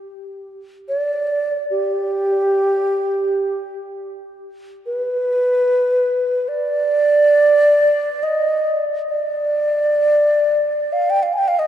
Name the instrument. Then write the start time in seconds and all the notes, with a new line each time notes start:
xiao
0.88 D5
1.71 G4
4.86 B4
6.48 D5
8.23 D#5
9.09 D5
10.93 F5
11.10 G5
11.23 F5
11.33 G#5
11.38 G5
11.48 F5
11.59 D#5